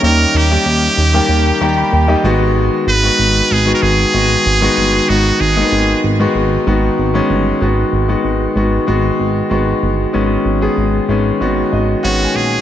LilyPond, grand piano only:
<<
  \new Staff \with { instrumentName = "Grand piano" } { \time 4/4 \key gis \minor \tempo 4 = 95 r2 r8 ais''16 b''16 g''16 dis''8. | r1 | r1 | r1 |
r2 r8 dis''8 \tuplet 3/2 { fis''8 gis''8 gis''8 } | }
  \new Staff \with { instrumentName = "Grand piano" } { \time 4/4 \key gis \minor <dis g ais dis'>8. <dis g ais g'>4 <dis g ais g'>8. <dis g ais g'>8. <dis g ais g'>16 <dis gis b fis'>8~ | <dis gis b fis'>8. <dis gis b fis'>4 <dis gis b fis'>8. <dis gis b fis'>8. <dis gis b fis'>8. | <dis gis b dis'>8. <dis gis ais b dis'>4 <dis gis b fis'>8. <dis gis b fis'>8. <dis gis b cis'>8. | <dis gis b fis'>8. <dis gis b fis'>8. <dis gis b fis'>8 <dis gis b fis'>4 <dis gis b fis'>4 |
<dis gis b cis'>8. <dis gis b gis'>8. <dis gis b cis'>8 <dis gis b fis'>4 <dis gis b cis'>4 | }
>>